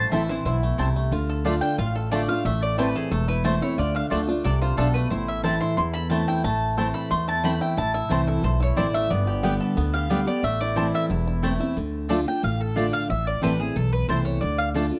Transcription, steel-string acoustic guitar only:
Already playing: A2
0.12 E3 A3 C4 E4
0.29 C4 E4
0.46 B2
0.79 C3
1.12 D3
1.45 D3 A3 D4 F4
1.79 A2
2.12 D3 A3 D4 F4
2.28 D4 F4
2.45 A2
2.78 E3 A3 C4 E4
3.11 E2
3.44 E3 A3 C4 E4
3.61 C4 E4
3.78 D3
4.11 D3 A3 D4 F4
4.27 D4 F4
4.44 C3
4.77 B2
5.11 A2
5.43 E3 A3 C4 E4
5.78 E2
6.10 E3 A3 C4 E4
6.45 A2
6.77 E3 A3 C4 E4
7.11 E2
7.43 E3 A3 C4 E4
7.77 A2
8.09 E3 A3 C4 E4
8.43 E2
8.76 E3 A3 C4 E4
9.11 G2
9.43 D3 G3 B3 G4
9.77 D3
10.10 D3 G3 B3 G4
10.26 B3 G4
10.43 A2
10.76 E3 A3 C4 E4
11.10 E2
11.43 E3 A3 C4 E4
11.60 C4 E4
11.77 D3
12.09 D3 A3 D4 F4
12.26 D4 F4
12.43 A2
12.76 D3 A3 D4 F4
13.10 A2
13.42 E3 A3 C4 E4
13.59 C4 E4
13.76 E2
14.08 E3 A3 C4 E4
14.42 D3
14.74 D3 A3 D4 F4
14.91 D4 F4

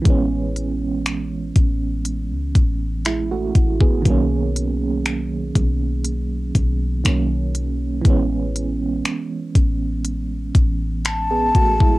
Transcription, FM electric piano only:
0.02 E3 G#3
0.07 B3 C#4
3.06 G#3 E4
3.31 A3 F#4
3.81 B3 G#4
4.02 D#3 F#3
4.08 A#3 C#4
7.04 D#3 F#3 A#3
7.08 C#4
8.02 E3 G#3
8.07 B3 C#4
11.31 B3 G#4
11.56 A3 F#4
11.81 G#3 E4

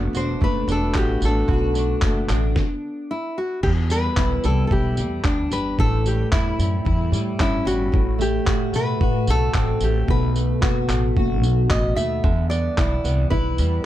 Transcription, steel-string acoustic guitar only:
Already playing: B2 A3 D4 F#4
0.16 D4
0.42 A3
0.70 D4
0.96 F#4
1.24 D4
1.50 B2 F#4
1.76 D4
2.03 A3
2.30 D4
3.64 E2
3.90 G3
4.17 E4
4.44 G3
4.71 E4
4.98 G3
5.24 D4
5.51 G3
5.78 A2
6.05 G3
6.32 E4
6.60 G3
6.85 E4
7.12 G3
7.39 C#4
7.66 G3
7.92 A2
8.19 A3
8.45 F#4
8.73 A3
9.01 F#4
9.28 A3
9.56 C4
9.82 A3
10.08 B2
10.35 A3
10.61 F#4
10.88 A3
11.17 F#4
11.44 A3
11.72 B3
11.97 A3
12.24 E2
12.53 G3
12.78 E4
13.06 G3
13.31 E4
13.59 G3

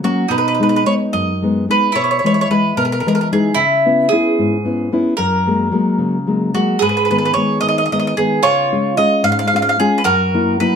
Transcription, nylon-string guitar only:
0.03 F#3 A#3 C#4
0.30 B2
0.60 G#3 B3 D#4
0.86 G#3 B3 D#4
1.13 F#2
1.42 G#3 B3 D#4
1.69 G#3 B3 D#4
1.95 B2
2.24 E3 G#3 D#5
2.50 E3 G#3 D#5
2.77 B2
3.06 E3 G#3 D#5
3.32 E3 G#3 D#4
3.56 C#3
3.86 B3 C#4 E4
4.12 B3 C#4 E4
4.38 G#2
4.65 B3 C#4 E4
4.92 B3 C#4 E4
5.18 F#2
5.47 F#3 G#3 A#3
5.72 F#3 G#3 A#3
5.98 C#3
6.27 F#3 G#3 A#3
6.54 F#3 G#3 A#3
6.81 G#2
7.10 D#3 G#3 B3
7.36 D#3 G#3 B3
7.63 D#3
7.92 D#3 G#3 B3
8.18 D#3 G#3 B3
8.44 C#3
8.72 G#3 C#4 F4
8.98 G#3 C#4 F4
9.23 G#2
9.53 G#3 C#4 F4
9.80 G#3 C#4 F4
10.05 F#2
10.34 F#3 A#3 E4
10.60 F#3 A#3 E4

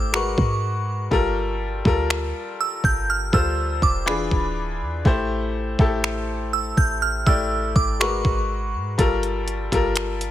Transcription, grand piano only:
Already playing: A3 E4 G4 C5
0.13 G#3 F#4 A#4 B4
1.11 G3 F4 A4 A#4
1.85 G3 F4 A4 A#4
3.32 G3 F4 A4 C5
4.06 E3 D4 F4 G#4
5.05 A3 E4 G4 C5
5.79 A3 E4 G4 A4
7.26 A3 E4 G4 D5
8.00 G#3 F#4 A#4 B4
8.98 G3 F4 A4 A#4
9.72 G3 F4 A4 A#4

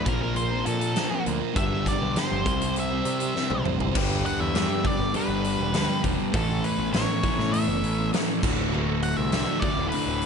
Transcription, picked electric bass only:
0.06 A#1
0.67 A#2
1.27 D2
1.56 G1
2.02 B1
2.32 G1
2.46 C2
3.05 C3
3.50 B1
3.64 A1
3.79 G1
3.96 G1
4.40 E2
4.99 G1
5.28 G1
5.58 E1
5.73 D2
6.04 E1
6.34 A1
6.78 A1
7.39 A2
7.68 F#1
7.83 A1
8.43 D1
9.18 C2
9.77 D1
10.06 D1

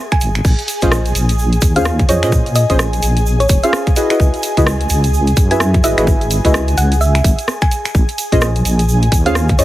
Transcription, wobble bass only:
0.22 G#1
0.45 A#1
0.82 A#1
1.15 A#1
1.62 D#2
2.09 F2
2.23 A#2
2.70 A#1
3.03 A#1
3.49 F1
4.20 C#2
4.57 C#2
4.90 C#2
5.37 F#2
5.84 G#1
5.98 G#1
6.45 C#2
6.77 C#2
7.24 G#1
7.95 A#1
8.32 A#1
8.65 A#1
9.12 D#2
9.59 F2

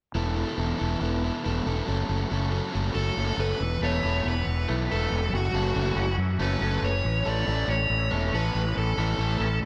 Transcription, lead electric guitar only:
2.95 A4
3.40 B4
3.84 C#5
4.28 B4
4.91 A4
5.35 F#4
6.42 B4
6.84 C#5
7.28 D5
7.70 C#5
8.35 B4
8.77 A4

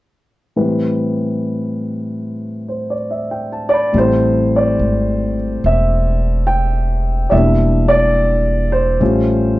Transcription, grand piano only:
0.56 A2 E3 G3 C4 B4
2.68 C5
2.90 D5
3.11 E5
3.31 G5
3.52 A5
3.69 D5
3.74 B5
3.92 G3 A3 C4
3.97 E4 C5
4.56 D5
5.66 E5
6.47 G5
7.30 G3 A#3 D4 E4 D5 E5
7.88 D5
8.72 C5
9.00 G3 A3 C#4 F4

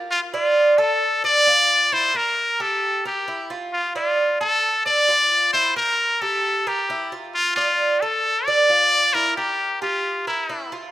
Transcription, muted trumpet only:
0.11 F4
0.34 F4
0.79 A4
1.25 D5
1.93 C5
2.17 A#4
2.62 A4
3.07 G4
3.73 F4
3.96 F4
4.41 A4
4.86 D5
5.53 C5
5.77 A#4
6.21 A4
6.68 G4
7.34 F4
7.56 F4
8.01 A4
8.45 D5
9.14 A#4
9.37 G4
9.82 F4
10.28 E4

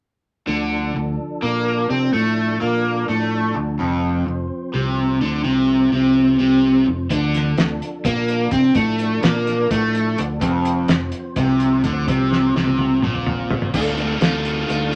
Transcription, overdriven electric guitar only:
0.47 D3
0.96 D3
1.42 A#3
1.90 C4
2.13 A3
2.60 A#3
3.09 A3
3.55 D3
3.79 F2
4.27 F2
4.74 C3
5.21 D3
5.44 C3
5.92 C3
6.39 C3
6.86 F2
7.11 D3
7.59 D3
8.05 A#3
8.52 C4
8.75 A3
9.23 A#3
9.71 A3
10.19 D3
10.41 F2
10.90 F2
11.37 C3
11.84 D3
12.08 C3
12.56 C3
13.03 A#2
13.75 D3 A3 D4 F4
13.97 A3 D4 F4
14.21 D3 A3 D4 F4

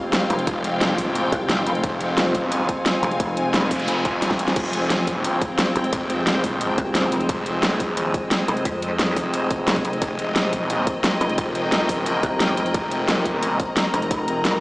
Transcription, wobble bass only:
0.30 F1
1.32 C2
1.67 F1
3.03 F1
3.20 F1
5.76 F1
6.78 C2
7.12 F1
8.48 F1
8.65 F2
9.68 F1
11.21 F1
12.23 C2
12.57 F1
13.94 F1
14.11 F1

